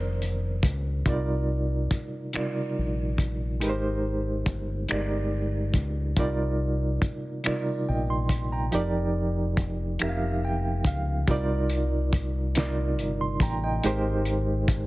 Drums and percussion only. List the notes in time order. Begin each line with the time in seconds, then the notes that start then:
0.22 closed hi-hat
0.63 kick, closed hi-hat
1.06 kick, closed hi-hat
1.91 kick, closed hi-hat
2.33 finger snap, closed hi-hat
3.18 kick, closed hi-hat
3.61 closed hi-hat
4.46 kick, closed hi-hat
4.89 finger snap, closed hi-hat
5.74 kick, closed hi-hat
6.17 kick, closed hi-hat
7.02 kick, closed hi-hat
7.44 finger snap, closed hi-hat
8.29 kick, closed hi-hat
8.72 closed hi-hat
9.57 kick, closed hi-hat
9.99 finger snap, closed hi-hat
10.85 kick, closed hi-hat
11.28 kick, closed hi-hat
11.70 closed hi-hat
12.13 kick, closed hi-hat
12.55 snare, closed hi-hat
12.99 closed hi-hat
13.40 kick, closed hi-hat
13.84 closed hi-hat
14.25 closed hi-hat
14.68 kick, closed hi-hat